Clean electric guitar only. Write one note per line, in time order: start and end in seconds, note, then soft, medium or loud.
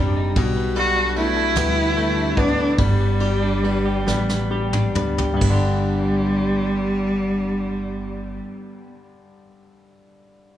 0.00 0.36 G3 medium
0.00 0.56 D4 medium
0.17 0.45 D#4 medium
0.37 1.56 G3 loud
0.57 1.16 B3 medium
0.76 1.35 A4 medium
0.97 2.17 D4 medium
1.16 1.76 B3 medium
1.37 1.95 A4 medium
1.57 5.07 G3 medium
1.77 2.37 B3 medium
1.97 2.57 A4 medium
2.17 3.42 D4 medium
2.37 2.79 B3 medium
2.58 2.87 A4 medium
2.79 3.00 B3 medium
3.00 3.64 B3 medium
3.21 3.85 G4 medium
3.43 4.73 D4 medium
3.64 4.07 B3 medium
3.86 4.51 G4 medium
4.08 4.29 B3 medium
4.30 4.96 B3 medium
4.52 5.18 G4 medium
4.74 5.45 D4 medium
4.96 5.36 B3 medium
5.18 5.53 G4 medium
5.37 8.87 B3 medium
5.46 8.96 D4 medium
5.53 9.03 G4 medium